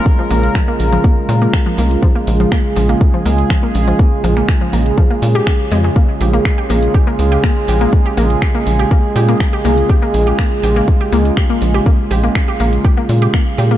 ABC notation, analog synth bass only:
X:1
M:4/4
L:1/8
Q:1/4=122
K:Bbm
V:1 name="Analog synth bass" clef=bass
z B,,, z B,,, z B,, z C,, | z B,,, z B,,, z D,, z B,,, | z B,,, z B,,, z B,, z F,, | z B,,, z B,,, z D,, z B,,, |
z B,,, z B,,, z B,, z C,, | z B,,, z B,,, z D,, z B,,, | z B,,, z B,,, z B,, z B,, |]